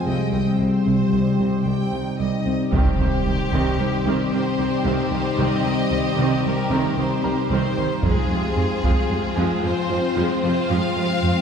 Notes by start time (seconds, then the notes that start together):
Already playing: C4 A#4 A#5
0.07 C2 C3 G3 D#4 G4 D#5 G5
0.33 C2 C4 D#5 G5
0.60 C2 C5
0.86 C2 C3
1.13 C2
1.40 C2 C3
1.66 C2 G5
1.93 C2
2.19 C2 C3 D#5
2.46 C2 C4
2.73 C2 C3 D#3 G3 C4 D#4 G4, taiko, impact
3.00 C2 D#3 C5
3.26 C2 D#3 G3
3.52 C2 C3 D#3 C4, taiko
3.79 C2 D#3 C5
4.06 C2 C3 D#3 C4
4.32 C2 D#3 C4 C5
4.59 C2 D#3 G3 C4
4.85 C2 C3 D#3 C4 G5
5.12 C2 D#3 G3 C5
5.38 C2 C3 D#3 C4 D#5
5.65 C2 D#3
5.91 C2 D#3 G3
6.18 C2 C3 D#3 C4
6.44 C2 D#3 A#4
6.71 C2 C3 D#3 C4
6.98 C2 D#3 C4 C5
7.24 C2 D#3 G3 C4 A#4 A#5
7.50 C2 C3 D#3 C4 C5
7.77 C2 D#3 G3
8.03 F2 F3 G#3 C4 F4 G#4 C5, taiko
8.30 F2 C3 F3 G#3
8.57 F2 F3 G#3
8.83 F2 F3 G#3, taiko
9.10 F2 C3 F3 G#3
9.36 F2 F3 G#3 G#5
9.63 F2 C3 F3 F4 C5
9.90 F2 F3 F4
10.16 F2 F3 G#3
10.43 F2 C3 F3 C4 C5
10.69 F2 F3 G#3 F5
10.96 F2 C3 F3 G#3
11.22 F2 F3 G#3